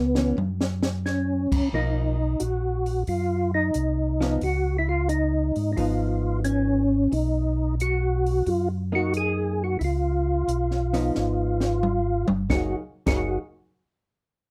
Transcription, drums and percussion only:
0.15 snare medium
0.38 high tom medium
0.61 snare medium
0.83 snare medium
1.06 snare soft
1.52 kick medium
1.52 crash medium
1.73 kick soft
2.40 closed hi-hat medium
2.86 open hi-hat soft
3.07 kick soft
3.07 open hi-hat soft
3.74 closed hi-hat soft
4.21 snare soft
4.41 kick soft
4.41 open hi-hat soft
5.09 closed hi-hat soft
5.56 open hi-hat soft
5.77 kick soft
5.77 open hi-hat soft
6.44 closed hi-hat soft
7.12 kick soft
7.12 open hi-hat soft
7.80 closed hi-hat medium
8.26 open hi-hat soft
8.47 kick soft
8.47 open hi-hat soft
9.14 closed hi-hat soft
9.81 kick soft
9.81 open hi-hat soft
10.48 closed hi-hat soft
10.71 snare soft
10.93 snare soft
10.93 open hi-hat soft
11.15 snare soft
11.60 snare medium
11.83 high tom medium
12.28 high tom medium
12.50 kick medium
12.50 snare medium
13.07 kick medium
13.07 snare medium
13.07 crash medium

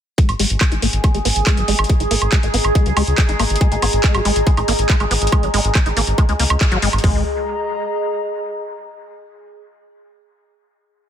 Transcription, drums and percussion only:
0.18 kick loud
0.18 closed hi-hat medium
0.29 closed hi-hat medium
0.29 high woodblock soft
0.40 open hi-hat loud
0.50 closed hi-hat medium
0.61 kick loud
0.61 clap loud
0.61 closed hi-hat medium
0.61 high woodblock medium
0.72 closed hi-hat medium
0.82 open hi-hat medium
0.93 closed hi-hat medium
1.04 kick loud
1.04 closed hi-hat medium
1.04 high woodblock soft
1.15 closed hi-hat medium
1.25 open hi-hat loud
1.36 closed hi-hat medium
1.47 kick loud
1.47 clap loud
1.47 closed hi-hat medium
1.47 high woodblock soft
1.57 closed hi-hat medium
1.68 open hi-hat medium
1.79 closed hi-hat soft
1.79 high woodblock medium
1.84 closed hi-hat medium
1.89 kick loud
1.89 closed hi-hat medium
2.00 closed hi-hat medium
2.11 open hi-hat loud
2.22 closed hi-hat medium
2.22 high woodblock soft
2.32 kick loud
2.32 clap loud
2.32 closed hi-hat medium
2.43 closed hi-hat medium
2.54 open hi-hat medium
2.64 closed hi-hat medium
2.64 high woodblock soft
2.75 kick loud
2.75 closed hi-hat medium
2.86 closed hi-hat medium
2.97 open hi-hat loud
2.97 high woodblock medium
3.07 closed hi-hat medium
3.18 kick loud
3.18 clap loud
3.18 closed hi-hat medium
3.29 closed hi-hat medium
3.40 open hi-hat medium
3.40 high woodblock soft
3.50 closed hi-hat soft
3.56 closed hi-hat medium
3.61 kick loud
3.61 closed hi-hat medium
3.72 closed hi-hat medium
3.82 open hi-hat loud
3.82 high woodblock soft
3.93 closed hi-hat soft
4.04 kick loud
4.04 clap loud
4.04 closed hi-hat medium
4.14 closed hi-hat medium
4.14 high woodblock medium
4.25 open hi-hat medium
4.36 closed hi-hat medium
4.47 kick loud
4.47 closed hi-hat medium
4.57 closed hi-hat soft
4.57 high woodblock soft
4.68 open hi-hat loud
4.79 closed hi-hat medium
4.89 kick loud
4.89 clap loud
4.89 closed hi-hat medium
5.00 closed hi-hat soft
5.00 high woodblock soft
5.11 open hi-hat loud
5.22 closed hi-hat soft
5.27 closed hi-hat medium
5.32 kick loud
5.32 high woodblock medium
5.43 closed hi-hat medium
5.54 open hi-hat loud
5.64 closed hi-hat soft
5.75 kick loud
5.75 clap loud
5.75 closed hi-hat medium
5.75 high woodblock soft
5.86 closed hi-hat medium
5.97 open hi-hat loud
6.07 closed hi-hat medium
6.18 kick loud
6.18 closed hi-hat medium
6.18 high woodblock soft
6.29 closed hi-hat soft
6.39 open hi-hat loud
6.50 closed hi-hat medium
6.50 high woodblock medium
6.61 kick loud
6.61 clap loud
6.61 closed hi-hat medium
6.72 closed hi-hat soft
6.82 open hi-hat medium
6.93 closed hi-hat soft
6.93 high woodblock soft
6.98 closed hi-hat medium
7.04 kick loud
7.04 floor tom loud
7.04 open hi-hat medium

